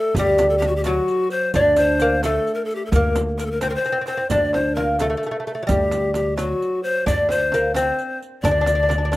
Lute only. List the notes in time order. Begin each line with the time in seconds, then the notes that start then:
Already playing: A3
0.19 G3
0.86 F#3
1.55 D4
2.02 A#3
2.25 A3
2.96 A#3
3.63 C4
3.71 C4
3.78 C4
3.86 C4
3.92 C4
4.01 C4
4.08 C4
4.17 C4
4.31 D4
4.77 A#3
5.01 A3
5.10 A3
5.17 A3
5.26 A3
5.31 A3
5.40 A3
5.47 A3
5.55 A3
5.63 F#3
5.67 G3
6.37 F#3
7.06 D4
7.54 A#3
7.76 C4
8.45 D4
8.51 D4
8.61 D4
8.67 D4
8.75 D4
8.83 D4
8.89 D4
8.98 D4
9.05 D4
9.12 D4